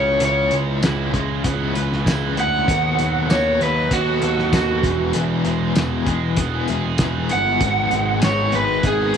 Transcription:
Already playing: picked electric bass C#2, overdriven electric guitar C#3 G#3 C#4 E4 C#5
0.20 picked electric bass C#2, overdriven electric guitar C#3 G#3 C#4 E4, closed hi-hat
0.25 overdriven electric guitar C#5
0.51 picked electric bass C#2, distorted electric guitar G#3, closed hi-hat
0.66 overdriven electric guitar G#3 C#4 E4
0.81 picked electric bass C#2, overdriven electric guitar C#3 G#3 C#4 E4, snare, closed hi-hat, tambourine
1.13 picked electric bass C#2, overdriven electric guitar C#3 G#3 C#4 E4, kick, closed hi-hat
1.30 muted overdriven electric guitar stroke
1.44 picked electric bass C#2, distorted electric guitar B3, kick, closed hi-hat
1.60 overdriven electric guitar G#3 C#4 E4
1.74 picked electric bass C#2, overdriven electric guitar C#3 G#3 C#4, distorted electric guitar B4, closed hi-hat
1.78 overdriven electric guitar E4
1.92 muted overdriven electric guitar stroke, snare
2.05 picked electric bass C#2, overdriven electric guitar C#3 G#3, distorted electric guitar E4, kick, snare, closed hi-hat, tambourine
2.10 overdriven electric guitar C#4 E4
2.21 overdriven electric guitar G#3 C#4 E4
2.36 picked electric bass D2, overdriven electric guitar C#3 G#3 C#4 E4 F#5, distorted electric guitar B3, closed hi-hat
2.68 picked electric bass D#2, overdriven electric guitar D#3 F#3 B3 F#4 A4, kick, closed hi-hat
2.98 picked electric bass D#2, distorted electric guitar F#3, closed hi-hat
3.14 overdriven electric guitar B3 F#4 A4
3.28 picked electric bass D#2, overdriven electric guitar D#3 F#3 B3 F#4 A4 C#5, snare, closed hi-hat, tambourine
3.59 picked electric bass D#2, overdriven electric guitar F#3 B3 F#4 A4 B4, closed hi-hat
3.75 muted overdriven electric guitar stroke
3.91 picked electric bass D#2, distorted electric guitar B3, overdriven electric guitar F#4, kick, closed hi-hat
4.06 overdriven electric guitar B3 F#4 A4
4.22 picked electric bass D#2, overdriven electric guitar F#3 B3 F#4 A4, closed hi-hat
4.38 muted overdriven electric guitar stroke, snare
4.52 picked electric bass D#2, overdriven electric guitar D#3 F#3 B3 F#4 A4, kick, snare, closed hi-hat, tambourine
4.67 overdriven electric guitar B3 F#4 A4
4.81 picked electric bass E1, distorted electric guitar E2, overdriven electric guitar E3 G#3 B3 E4 G#4, kick, closed hi-hat
5.13 picked electric bass E1, distorted electric guitar E2, overdriven electric guitar E3 G#3 B3 E4 G#4, closed hi-hat
5.45 picked electric bass E1, distorted electric guitar G#3, closed hi-hat
5.60 overdriven electric guitar B3 E4 G#4
5.75 picked electric bass E1, overdriven electric guitar E3 G#3 B3 E4 G#4, snare, closed hi-hat, tambourine
6.06 picked electric bass E1, overdriven electric guitar G#3 B3 E4 G#4, kick, closed hi-hat
6.22 muted overdriven electric guitar stroke
6.36 picked electric bass E1, distorted electric guitar B3, kick, closed hi-hat
6.53 overdriven electric guitar B3 E4 G#4
6.68 picked electric bass E1, overdriven electric guitar G#3 B3 E4, closed hi-hat
6.72 overdriven electric guitar G#4
6.86 muted overdriven electric guitar stroke
6.98 picked electric bass E1, overdriven electric guitar E3 G#3 B3, kick, snare, closed hi-hat, tambourine
7.03 overdriven electric guitar E4 G#4
7.16 overdriven electric guitar B3 E4 G#4
7.29 picked electric bass G1, overdriven electric guitar G#3 B3 F#5, closed hi-hat
7.34 overdriven electric guitar E4 G#4
7.61 picked electric bass G#1, overdriven electric guitar G#2 D#3 G#3 B3, string machine D#3 G#3 B3 G#4, kick, closed hi-hat
7.65 overdriven electric guitar D#4 G#4
7.91 picked electric bass G#1, distorted electric guitar G#3, closed hi-hat
8.08 overdriven electric guitar G#3 B3 D#4 G#4
8.22 picked electric bass G#1, overdriven electric guitar G#2 D#3 G#3 B3 D#4 G#4 C#5, snare, closed hi-hat, tambourine
8.52 picked electric bass G#1, overdriven electric guitar G#3 B3 D#4 G#4 B4, closed hi-hat
8.69 muted overdriven electric guitar stroke
8.83 picked electric bass G#1, distorted electric guitar B3, overdriven electric guitar G#4, kick, closed hi-hat
8.99 overdriven electric guitar G#3 B3 D#4 G#4
9.14 distorted electric guitar G#4, closed hi-hat

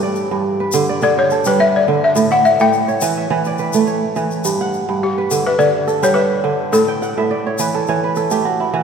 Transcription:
Already playing: kora G2 A3 G4 A4 B4
0.03 kora D5
0.15 shaker
0.31 kora G2
0.60 kora B4
0.72 kora D3, shaker
0.89 kora D5
1.01 kora D3, balafon D5, shaker
1.18 kora C#5, balafon C#5
1.30 kora A4, shaker
1.45 kora G3, balafon B4, shaker
1.59 kora B4, balafon E5
1.76 balafon D5
1.88 kora D3
2.04 balafon E5
2.16 kora A2, shaker
2.31 kora E5, balafon F#5, shaker
2.45 balafon E5, shaker
2.59 kora A2, balafon G5, shaker
2.73 shaker
2.88 kora C#5, shaker
3.01 kora E3, shaker
3.17 kora E5
3.30 kora E3
3.44 kora D5, shaker
3.58 kora B4, shaker
3.73 kora A3, shaker
3.87 kora C#5, shaker
4.16 kora E3, shaker
4.31 shaker
4.44 kora G2, shaker
4.61 kora F#5
4.73 shaker
4.89 kora G2
5.03 balafon G4
5.18 kora B4
5.31 kora D3, shaker
5.46 balafon B4, kora E5
5.59 kora D3, balafon D5, shaker
5.87 kora A4, shaker
6.03 kora G3 B4, balafon C#5, shaker
6.14 balafon B4, kora E5
6.44 kora D3
6.72 kora A2 A5, balafon A4, shaker
6.88 kora G5
7.02 kora F#5, shaker
7.17 kora A2 E5
7.31 kora D5
7.46 kora C#5
7.58 kora E3 B4, shaker
7.75 kora A4
7.87 kora E3 C#5, shaker
8.04 kora B4
8.16 kora A4, shaker
8.31 kora A3 G4, shaker
8.45 kora F#4
8.60 kora E4
8.73 kora E3 F#4

